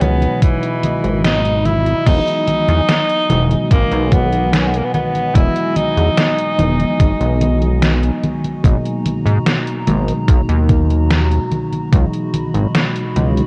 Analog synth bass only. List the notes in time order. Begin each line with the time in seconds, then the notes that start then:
0.01 C#2
1.04 G#1
2.06 E1
2.68 E2
3.30 E1
3.71 G#1
3.92 B1
5.35 E1
5.97 E2
6.58 E1
7.00 G#1
7.20 B1
8.64 G#1
9.26 G#2
9.87 G#1
10.28 B1
10.49 D#2
11.93 C#2
12.54 G#1
13.16 C#2